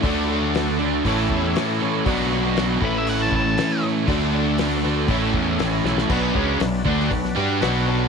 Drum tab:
CC |----------------|----------------|----------------|x---------------|
HH |o---o---o---o---|o---o---o---o---|o---o---o---o---|----o---o---o---|
SD |----o-------o---|----o-------o---|----o-------o-oo|----o--o-o--o---|
BD |o-------o-o-----|o-----o---o-----|o-------o-o-----|o-o---o-o-------|